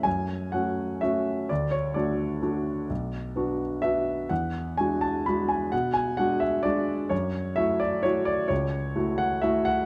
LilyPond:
\new Staff \with { instrumentName = "Grand piano" } { \time 3/4 \key fis \minor \tempo 4 = 128 << { gis''4 fis''4 e''4 | d''8 cis''8 d''2~ | d''4. r8 e''4 | fis''4 gis''8 a''8 b''8 gis''8 |
fis''8 gis''8 fis''8 e''8 d''4 | cis''4 e''8 d''8 cis''8 d''8 | cis''4. fis''8 e''8 fis''8 | } \\ { fis,4 <a cis' fis'>4 <a cis' fis'>4 | d,4 <a d' fis'>4 <a d' fis'>4 | b,,4 <b d' fis'>4 <b d' fis'>4 | e,4 <gis d' fis'>4 <gis d' fis'>4 |
b,4 <gis d' fis'>4 <gis d' fis'>4 | fis,4 <a e' fis'>4 <a e' fis'>4 | cis,4 <a e' fis'>4 <a e' fis'>4 | } >> }